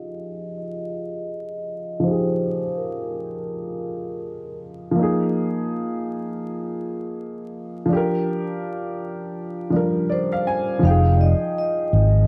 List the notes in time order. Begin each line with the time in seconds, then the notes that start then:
Already playing: F3 D#4 G4 G#4 D#5
0.58 D#5
2.00 F3 D#4
2.04 G4 C5
2.11 G#4
2.77 A#4
4.91 F3
4.95 A#3 D#4
5.03 G#4
7.86 F3 D4
7.93 G4 A#4
9.70 F3 G3 D4
9.76 A#4
10.10 C5 D5
10.32 F5
10.47 G#5
10.79 F3 D#4
10.83 F1 F5 G5
10.90 G#4
11.16 D5
11.21 D#5
11.58 D#5
11.93 G#1